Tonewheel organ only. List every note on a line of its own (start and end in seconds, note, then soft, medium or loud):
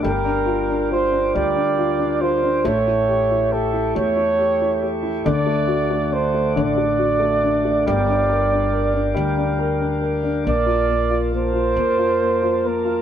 0.00 2.61 D6 medium
0.04 2.63 A#4 medium
0.04 2.63 F5 medium
0.04 5.23 G5 medium
2.67 7.84 A4 medium
2.67 5.25 E5 medium
2.67 5.25 C#6 medium
5.25 7.84 D5 medium
5.25 7.84 F#5 medium
5.25 7.84 D6 medium
7.86 13.02 A#4 medium
7.86 10.44 F5 medium
7.86 10.45 G5 medium
7.86 13.02 D6 medium
10.48 13.02 F5 medium
10.48 13.02 A5 medium